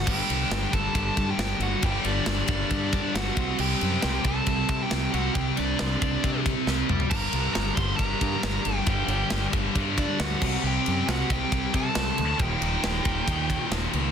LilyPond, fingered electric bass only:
\new Staff \with { instrumentName = "Fingered electric bass" } { \clef bass \time 4/4 \tempo 4 = 136 g,,8 c,8 g,,8 g,,8 g,,8 g,8 g,,8 g,,8 | g,,8 g,,8 g,,8 g,,8 g,4 g,,8 c,8 | c,8 fis,8 c,8 c,8 c,8 c8 c,8 c,8 | c,8 c,8 c,8 c,8 c4 c,8 c,8 |
g,,8 c,8 g,,8 g,,8 g,,8 g,8 g,,8 g,,8 | g,,8 g,,8 g,,8 g,,8 g,4 d,8 c,8 | c,8 fis,8 c,8 c,8 c,8 c8 c,8 d,8 | ees,,8 ees,,8 ees,,8 ees,,8 ees,4 ees,,8 cis,8 | }